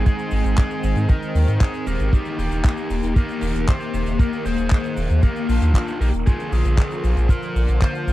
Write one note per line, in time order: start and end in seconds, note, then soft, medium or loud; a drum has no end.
0.00 6.23 D#3 medium
0.00 2.09 G#3 medium
0.00 2.09 C4 medium
0.06 0.55 D#4 medium
0.06 0.57 G#4 loud
0.06 kick loud
0.06 closed hi-hat medium
0.06 cabasa medium
0.19 closed hi-hat soft
0.19 cabasa soft
0.31 0.42 G#1 medium
0.31 open hi-hat loud
0.31 cabasa medium
0.44 0.55 G#1 medium
0.44 closed hi-hat medium
0.44 cabasa medium
0.57 1.06 D#4 medium
0.57 1.09 G#4 loud
0.57 kick loud
0.57 clap loud
0.57 closed hi-hat medium
0.57 cabasa medium
0.71 closed hi-hat soft
0.71 cabasa soft
0.83 0.94 G#1 medium
0.83 open hi-hat loud
0.83 cabasa medium
0.96 1.07 G#2 medium
0.96 closed hi-hat medium
0.96 cabasa soft
1.09 1.58 D#4 medium
1.09 1.58 A#4 loud
1.09 kick loud
1.09 closed hi-hat medium
1.09 cabasa medium
1.22 closed hi-hat soft
1.22 cabasa soft
1.35 1.46 D#2 medium
1.35 open hi-hat loud
1.35 cabasa medium
1.48 1.58 G#2 medium
1.48 closed hi-hat medium
1.48 cabasa soft
1.61 1.86 D#4 medium
1.61 1.87 G#4 loud
1.61 kick loud
1.61 clap loud
1.61 closed hi-hat medium
1.61 cabasa medium
1.74 closed hi-hat soft
1.74 cabasa soft
1.86 1.97 D#1 medium
1.86 2.12 G4 medium
1.86 2.14 A#4 loud
1.86 open hi-hat loud
1.86 cabasa medium
2.00 2.10 G#1 medium
2.00 closed hi-hat medium
2.00 cabasa soft
2.13 8.13 A#3 medium
2.13 2.37 D#4 medium
2.13 2.37 G4 loud
2.13 kick loud
2.13 closed hi-hat medium
2.13 cabasa medium
2.25 closed hi-hat soft
2.25 cabasa soft
2.39 2.49 D#1 medium
2.39 3.13 D#4 medium
2.39 3.16 G4 loud
2.39 open hi-hat loud
2.39 cabasa medium
2.52 2.62 D#1 medium
2.52 closed hi-hat medium
2.52 cabasa medium
2.64 kick loud
2.64 clap loud
2.64 closed hi-hat medium
2.64 cabasa medium
2.77 closed hi-hat soft
2.77 cabasa soft
2.90 3.01 D#1 medium
2.90 open hi-hat loud
2.90 cabasa medium
3.03 3.14 D#1 medium
3.03 closed hi-hat medium
3.03 cabasa soft
3.16 3.65 G4 medium
3.16 3.68 A#4 loud
3.16 kick loud
3.16 closed hi-hat medium
3.16 cabasa medium
3.29 closed hi-hat soft
3.29 cabasa soft
3.41 3.52 D#1 medium
3.41 open hi-hat loud
3.41 cabasa medium
3.55 3.65 D#1 medium
3.55 closed hi-hat medium
3.55 cabasa soft
3.68 4.17 G4 medium
3.68 4.19 C5 loud
3.68 kick loud
3.68 clap loud
3.68 closed hi-hat medium
3.68 cabasa medium
3.80 closed hi-hat soft
3.80 cabasa soft
3.94 4.04 D#1 medium
3.94 open hi-hat medium
3.94 cabasa medium
4.06 4.17 D#1 medium
4.06 closed hi-hat medium
4.06 cabasa soft
4.19 4.44 G4 medium
4.19 4.45 A#4 loud
4.19 kick loud
4.19 closed hi-hat medium
4.19 cabasa medium
4.33 closed hi-hat soft
4.33 cabasa soft
4.46 4.56 D#1 loud
4.46 5.20 G#4 medium
4.46 5.23 C5 loud
4.46 open hi-hat loud
4.46 cabasa medium
4.58 4.69 D#1 medium
4.58 closed hi-hat medium
4.58 cabasa soft
4.70 kick loud
4.70 clap loud
4.70 closed hi-hat medium
4.70 cabasa medium
4.84 closed hi-hat soft
4.84 cabasa soft
4.97 5.08 D#1 loud
4.97 open hi-hat medium
4.97 cabasa medium
5.10 5.21 D#2 medium
5.10 closed hi-hat medium
5.10 cabasa medium
5.23 5.48 G4 medium
5.23 5.50 A#4 loud
5.23 kick loud
5.23 closed hi-hat medium
5.23 cabasa medium
5.36 closed hi-hat soft
5.36 cabasa soft
5.49 5.59 A#1 medium
5.49 5.97 D4 medium
5.49 6.01 F4 medium
5.49 open hi-hat loud
5.49 cabasa medium
5.62 5.72 D#2 medium
5.62 closed hi-hat medium
5.62 cabasa medium
5.74 kick loud
5.74 clap loud
5.74 closed hi-hat medium
5.74 cabasa medium
5.88 closed hi-hat soft
5.88 cabasa soft
6.01 6.11 A#1 medium
6.01 6.08 G4 medium
6.01 6.08 A#4 loud
6.01 open hi-hat loud
6.01 cabasa medium
6.14 6.24 D#1 medium
6.14 closed hi-hat medium
6.14 cabasa soft
6.27 8.13 D3 medium
6.27 8.13 F3 medium
6.27 6.51 F4 medium
6.27 6.51 G#4 loud
6.27 kick loud
6.27 closed hi-hat medium
6.27 cabasa medium
6.40 closed hi-hat soft
6.40 cabasa soft
6.52 6.63 A#1 loud
6.52 7.26 F4 medium
6.52 7.30 G#4 loud
6.52 open hi-hat loud
6.52 cabasa medium
6.65 6.76 A#1 medium
6.65 closed hi-hat medium
6.65 cabasa medium
6.78 kick loud
6.78 clap loud
6.78 closed hi-hat medium
6.78 cabasa medium
6.91 closed hi-hat soft
6.91 cabasa soft
7.04 7.14 A#1 medium
7.04 open hi-hat medium
7.04 cabasa medium
7.17 7.27 A#1 medium
7.17 closed hi-hat medium
7.17 cabasa medium
7.29 7.78 F4 medium
7.29 7.82 A#4 loud
7.29 kick loud
7.29 closed hi-hat medium
7.29 cabasa medium
7.42 closed hi-hat soft
7.42 cabasa soft
7.56 7.66 A#1 loud
7.56 open hi-hat loud
7.56 cabasa medium
7.68 7.79 A#1 medium
7.68 closed hi-hat medium
7.68 cabasa medium
7.81 8.13 F4 medium
7.81 8.13 C5 loud
7.81 kick loud
7.81 clap loud
7.81 closed hi-hat medium
7.81 cabasa medium
7.95 closed hi-hat soft
7.95 cabasa soft
8.07 8.13 A#1 loud
8.07 open hi-hat loud
8.07 cabasa medium